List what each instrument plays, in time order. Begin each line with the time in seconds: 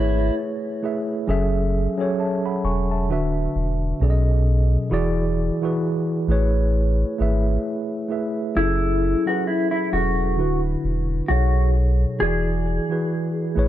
Already playing: sub bass G#1, tine electric piano A3 E4 G#4 B4 C#5, clean electric guitar E4
0.82 tine electric piano A3 E4 G#4 B4 E5
1.27 sub bass F#1, tine electric piano F#3 C#4 G#4 A4 E5
1.97 tine electric piano F#3 C#4 G#4 A4 C#5
2.20 tine electric piano E5 A5
2.46 tine electric piano F#5 B5
2.64 sub bass E1, tine electric piano G#5 C#6
2.91 tine electric piano E5 A5
3.09 sub bass D1, tine electric piano D3 D4 F#4 B4 E5
3.55 sub bass E1
4.00 sub bass B1, tine electric piano B2 F#3 C#4 G#4 A4 D5
4.10 tine electric piano D#5
4.90 sub bass E1, tine electric piano E3 E4 F#4 G#4 D5
5.62 tine electric piano E3 E4 F#4 G#4 B4
6.28 sub bass A1, tine electric piano A3 E4 G#4 B4
6.32 tine electric piano C#5
7.18 sub bass G#1, tine electric piano A3 E4 G#4 B4 E5
8.09 tine electric piano A3 E4 G#4 B4 E5
8.55 sub bass F#1, tine electric piano F#3 C#4 E4 G#4 A4, clean electric guitar E4
9.26 tine electric piano F#3 C#4 E4 G#4 B4, clean electric guitar F#4
9.47 clean electric guitar E4
9.71 clean electric guitar E4
9.92 sub bass E1, tine electric piano F#3 C#4 E4 G#4 A4, clean electric guitar F#4
10.37 sub bass D1, tine electric piano D3 D4 E4 F#4 B4
10.84 sub bass E1
11.28 sub bass B1, tine electric piano B2 F#3 D#4 G#4 A4 C#5, clean electric guitar F#4
12.19 sub bass E1, tine electric piano E3 E4 F#4 G#4 D5, clean electric guitar G#4
12.89 tine electric piano E3 E4 F#4 G#4 B4
13.55 sub bass A1, tine electric piano A3 E4 G#4 B4 C#5